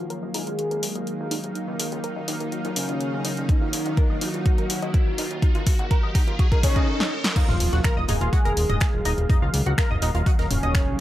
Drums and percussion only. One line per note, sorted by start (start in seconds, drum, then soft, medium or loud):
0.10 closed hi-hat soft
0.34 open hi-hat medium
0.47 closed hi-hat soft
0.59 closed hi-hat soft
0.71 closed hi-hat soft
0.83 open hi-hat loud
0.95 closed hi-hat soft
1.07 closed hi-hat soft
1.31 open hi-hat medium
1.44 closed hi-hat soft
1.55 closed hi-hat soft
1.80 open hi-hat loud
1.92 closed hi-hat soft
2.04 closed hi-hat soft
2.28 open hi-hat medium
2.40 closed hi-hat soft
2.52 closed hi-hat soft
2.65 closed hi-hat soft
2.76 open hi-hat loud
2.89 closed hi-hat soft
3.01 closed hi-hat soft
3.25 open hi-hat medium
3.37 closed hi-hat soft
3.49 kick loud
3.49 closed hi-hat soft
3.73 open hi-hat loud
3.86 closed hi-hat soft
3.97 kick loud
3.97 closed hi-hat soft
4.21 open hi-hat medium
4.34 closed hi-hat soft
4.46 kick loud
4.46 closed hi-hat soft
4.58 closed hi-hat soft
4.70 open hi-hat loud
4.82 closed hi-hat soft
4.94 kick loud
4.94 closed hi-hat soft
5.18 open hi-hat medium
5.31 closed hi-hat soft
5.42 kick loud
5.42 closed hi-hat soft
5.55 closed hi-hat soft
5.67 kick loud
5.67 open hi-hat loud
5.79 closed hi-hat soft
5.91 kick loud
5.91 closed hi-hat soft
6.15 kick loud
6.15 open hi-hat loud
6.28 closed hi-hat soft
6.39 kick loud
6.39 closed hi-hat soft
6.52 kick medium
6.52 closed hi-hat soft
6.63 kick loud
6.63 open hi-hat loud
6.76 kick medium
6.76 closed hi-hat soft
7.00 snare medium
7.24 snare loud
7.36 kick loud
7.36 closed hi-hat soft
7.36 closed hi-hat medium
7.36 crash loud
7.48 snare medium
7.48 mid tom medium
7.60 closed hi-hat medium
7.60 open hi-hat loud
7.73 snare soft
7.73 closed hi-hat soft
7.84 finger snap loud
7.84 kick loud
7.84 snare loud
7.84 closed hi-hat loud
7.84 closed hi-hat soft
8.08 closed hi-hat medium
8.08 mid tom medium
8.08 open hi-hat medium
8.21 closed hi-hat soft
8.33 kick loud
8.33 closed hi-hat soft
8.33 closed hi-hat medium
8.45 closed hi-hat soft
8.57 closed hi-hat medium
8.57 open hi-hat loud
8.70 closed hi-hat soft
8.70 mid tom medium
8.80 finger snap loud
8.80 kick loud
8.80 snare loud
8.80 closed hi-hat medium
8.80 closed hi-hat soft
9.05 closed hi-hat medium
9.05 open hi-hat medium
9.18 closed hi-hat soft
9.30 kick loud
9.30 closed hi-hat soft
9.30 closed hi-hat medium
9.30 mid tom medium
9.54 closed hi-hat medium
9.54 open hi-hat loud
9.66 closed hi-hat soft
9.78 finger snap loud
9.78 kick loud
9.78 snare loud
9.78 closed hi-hat medium
9.78 closed hi-hat soft
9.90 mid tom medium
10.02 closed hi-hat medium
10.02 open hi-hat loud
10.15 closed hi-hat soft
10.26 kick loud
10.26 closed hi-hat soft
10.26 closed hi-hat medium
10.39 snare medium
10.39 closed hi-hat soft
10.51 closed hi-hat medium
10.51 mid tom medium
10.51 open hi-hat loud
10.63 closed hi-hat soft
10.74 finger snap loud
10.74 kick loud
10.74 snare loud
10.74 closed hi-hat medium
10.74 closed hi-hat soft